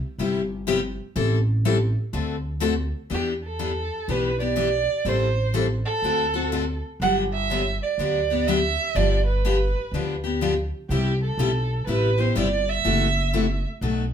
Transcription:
0.18 0.97 G1 medium
0.18 0.41 C3 medium
0.18 0.41 G3 medium
0.18 0.41 B3 medium
0.18 0.41 E4 medium
0.18 0.41 G4 medium
0.67 0.79 C3 medium
0.67 0.79 G3 medium
0.67 0.79 B3 medium
0.67 0.79 E4 medium
0.67 0.79 G4 loud
1.16 1.94 A1 medium
1.16 1.38 E3 medium
1.16 1.37 G3 medium
1.16 1.38 C4 medium
1.16 1.38 E4 medium
1.16 1.38 A4 medium
1.65 1.76 E3 medium
1.65 1.76 G3 medium
1.65 1.77 C4 medium
1.65 1.77 E4 medium
1.65 1.77 A4 medium
2.13 2.91 D2 medium
2.13 2.35 D3 medium
2.13 2.35 A3 medium
2.13 2.35 C4 medium
2.13 2.35 F#4 medium
2.13 2.35 A4 medium
2.60 2.73 D3 medium
2.60 2.73 A3 medium
2.60 2.73 C4 loud
2.60 2.73 F#4 loud
2.60 2.73 A4 medium
3.10 3.89 E2 medium
3.10 3.32 E3 medium
3.10 3.32 B3 medium
3.10 3.33 D4 medium
3.10 3.33 G4 medium
3.15 3.28 G4 medium
3.44 4.12 A4 medium
3.59 3.71 E3 medium
3.59 3.71 B3 medium
3.59 3.71 D4 medium
3.59 3.71 G4 medium
4.08 4.86 B1 medium
4.08 4.30 E3 medium
4.08 4.30 B3 medium
4.08 4.30 D4 medium
4.08 4.31 G4 medium
4.08 4.40 B4 medium
4.40 4.55 B3 soft
4.40 4.56 D4 medium
4.40 4.56 G4 medium
4.40 5.10 D5 medium
4.56 4.68 E3 medium
4.56 4.68 B3 medium
4.56 4.68 D4 medium
4.56 4.68 G4 medium
5.05 5.83 A1 medium
5.05 5.27 E3 medium
5.05 5.27 G3 medium
5.05 5.27 C4 medium
5.05 5.27 E4 medium
5.05 5.27 A4 medium
5.09 5.56 C5 medium
5.54 5.66 E3 medium
5.54 5.65 G3 medium
5.54 5.66 C4 medium
5.54 5.66 E4 medium
5.54 5.66 A4 medium
5.86 6.79 A4 loud
6.02 6.81 D2 medium
6.02 6.25 D3 medium
6.02 6.25 A3 medium
6.02 6.25 C4 medium
6.02 6.25 F#4 medium
6.02 6.26 A4 medium
6.34 6.51 C4 soft
6.34 6.51 F#4 medium
6.34 6.51 A4 medium
6.52 6.63 D3 medium
6.52 6.63 A3 medium
6.52 6.63 C4 medium
6.52 6.64 F#4 medium
6.52 6.64 A4 medium
7.00 7.78 G1 medium
7.00 7.23 D3 medium
7.00 7.23 F#3 medium
7.00 7.23 B3 medium
7.00 7.23 D4 medium
7.00 7.23 G4 medium
7.00 7.15 F#5 loud
7.33 7.78 E5 medium
7.50 7.61 D3 medium
7.50 7.62 F#3 medium
7.50 7.62 B3 medium
7.50 7.62 D4 medium
7.50 7.62 G4 medium
7.83 8.49 D5 medium
7.98 8.76 D2 medium
7.98 8.20 D3 medium
7.98 8.21 F#3 medium
7.98 8.20 B3 medium
7.98 8.21 D4 medium
7.98 8.21 G4 medium
8.30 8.47 B3 soft
8.30 8.47 D4 medium
8.30 8.47 G4 medium
8.47 8.59 D3 medium
8.47 8.59 F#3 medium
8.47 8.59 B3 medium
8.47 8.59 D4 medium
8.47 8.59 G4 loud
8.47 8.97 E5 medium
8.95 9.73 G1 medium
8.95 9.17 D3 medium
8.95 9.17 F3 medium
8.95 9.17 B3 medium
8.95 9.17 D4 medium
8.95 9.17 G4 medium
8.95 9.26 D5 medium
9.26 10.20 B4 medium
9.45 9.56 D3 medium
9.45 9.56 F3 medium
9.45 9.56 B3 medium
9.45 9.56 D4 medium
9.45 9.56 G4 medium
9.92 10.70 D2 medium
9.92 10.15 D3 soft
9.92 10.15 F3 medium
9.92 10.15 B3 medium
9.92 10.15 D4 medium
9.92 10.15 G4 medium
10.24 10.41 B3 soft
10.24 10.41 D4 medium
10.24 10.41 G4 soft
10.41 10.53 D3 medium
10.41 10.53 F3 medium
10.41 10.53 B3 medium
10.41 10.53 D4 medium
10.41 10.53 G4 medium
10.89 11.28 C2 medium
10.89 11.12 C3 medium
10.89 11.12 G3 medium
10.89 11.12 B3 medium
10.89 11.12 E4 medium
10.89 11.19 G4 medium
10.89 11.12 G4 medium
11.22 11.84 A4 medium
11.38 11.79 B1 medium
11.38 11.50 C3 medium
11.38 11.50 G3 medium
11.38 11.50 B3 medium
11.38 11.51 E4 medium
11.38 11.51 G4 medium
11.87 12.29 A1 medium
11.87 12.09 C3 medium
11.87 12.09 G3 medium
11.87 12.09 B3 medium
11.87 12.09 E4 medium
11.87 12.10 G4 medium
11.87 12.22 B4 medium
12.18 12.35 B3 soft
12.18 12.35 E4 medium
12.18 12.35 G4 medium
12.18 12.37 C5 medium
12.35 12.77 G1 medium
12.35 12.47 C3 medium
12.35 12.47 G3 medium
12.35 12.47 B3 medium
12.35 12.48 E4 medium
12.35 12.48 G4 medium
12.35 12.71 D5 medium
12.69 13.65 E5 loud
12.84 13.63 F#1 medium
12.84 13.06 C3 medium
12.84 13.06 E3 medium
12.84 13.06 A3 medium
12.84 13.06 E4 medium
12.84 13.07 F#4 medium
13.33 13.45 C3 medium
13.33 13.45 E3 medium
13.33 13.45 A3 medium
13.33 13.45 E4 medium
13.33 13.45 F#4 medium
13.81 14.13 B1 medium
13.81 14.04 B2 soft
13.81 14.04 F#3 medium
13.81 14.04 A3 medium
13.81 14.04 D#4 medium
13.81 14.04 F#4 medium

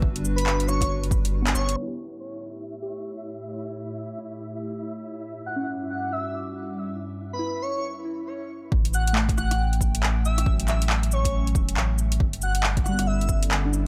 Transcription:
0.00 1.54 G1 loud
0.00 0.34 D3 medium
0.00 1.73 G3 medium
0.00 1.79 G3 medium
0.00 1.42 B3 medium
0.00 1.73 D4 medium
0.00 1.72 F#4 medium
0.00 1.73 B4 medium
0.00 kick loud
0.16 closed hi-hat soft
0.25 cabasa medium
0.36 0.65 B4 loud
0.36 closed hi-hat medium
0.46 clap loud
0.60 closed hi-hat soft
0.67 0.91 C#5 medium
0.67 cross-stick medium
0.67 cabasa medium
0.81 kick medium
0.81 cross-stick medium
0.81 closed hi-hat medium
1.04 closed hi-hat soft
1.11 kick loud
1.11 cabasa medium
1.25 closed hi-hat medium
1.42 1.94 B3 medium
1.47 clap loud
1.47 closed hi-hat soft
1.55 1.75 G1 medium
1.55 1.77 C#5 loud
1.55 cabasa medium
1.69 closed hi-hat medium
1.76 5.21 A2 medium
1.76 5.21 A3 medium
1.76 7.86 E4 medium
1.76 5.21 G4 medium
1.76 5.21 C#5 medium
1.76 7.86 E5 medium
1.82 2.55 E4 medium
1.88 2.58 G4 soft
2.82 3.55 G4 medium
4.18 4.92 E4 soft
5.22 7.82 G2 medium
5.22 7.82 G3 medium
5.22 7.81 F#4 medium
5.22 7.82 D6 medium
5.46 5.55 F#5 medium
5.56 6.28 C#4 medium
5.56 5.65 F#5 medium
5.90 6.12 F#5 medium
6.13 6.35 E5 medium
7.33 7.62 B4 loud
7.39 8.13 E4 medium
7.62 7.85 C#5 medium
8.70 10.45 A1 loud
8.70 12.15 A3 medium
8.70 12.16 C#4 medium
8.70 12.15 G5 medium
8.70 kick loud
8.85 closed hi-hat soft
8.94 9.03 F#5 medium
8.94 cabasa medium
9.07 9.13 F#5 medium
9.07 closed hi-hat medium
9.13 9.86 A3 medium
9.13 clap loud
9.29 kick loud
9.29 closed hi-hat soft
9.37 9.60 F#5 medium
9.37 cross-stick medium
9.37 cabasa medium
9.51 cross-stick medium
9.51 closed hi-hat medium
9.73 closed hi-hat soft
9.81 kick medium
9.81 cabasa medium
9.95 closed hi-hat medium
10.03 clap loud
10.25 10.48 E5 loud
10.25 cabasa medium
10.38 cross-stick medium
10.38 closed hi-hat medium
10.46 11.54 A1 loud
10.46 kick loud
10.53 11.26 F#3 medium
10.60 closed hi-hat soft
10.68 10.91 E5 medium
10.68 clap medium
10.68 cabasa medium
10.82 closed hi-hat medium
10.90 clap loud
11.03 closed hi-hat soft
11.12 11.47 C#5 loud
11.12 cabasa medium
11.25 kick medium
11.25 closed hi-hat medium
11.47 closed hi-hat soft
11.55 11.75 E1 loud
11.55 kick loud
11.55 cabasa medium
11.69 closed hi-hat medium
11.77 12.19 A1 medium
11.77 clap loud
11.98 cabasa medium
12.12 closed hi-hat medium
12.20 13.87 G1 loud
12.20 13.87 D3 medium
12.20 13.87 G3 medium
12.20 13.87 E4 medium
12.20 kick loud
12.33 closed hi-hat soft
12.42 12.51 F#5 medium
12.42 cabasa medium
12.55 12.61 F#5 medium
12.55 closed hi-hat medium
12.63 clap loud
12.77 kick loud
12.77 closed hi-hat soft
12.84 13.06 F#5 medium
12.84 cross-stick medium
12.84 cabasa medium
12.88 13.62 G3 medium
12.94 13.65 B3 medium
12.99 13.68 C#4 medium
12.99 cross-stick medium
12.99 closed hi-hat medium
13.07 13.30 E5 medium
13.21 closed hi-hat soft
13.29 kick medium
13.29 cabasa medium
13.43 closed hi-hat medium
13.51 clap loud
13.65 13.87 D4 medium
13.73 cabasa medium

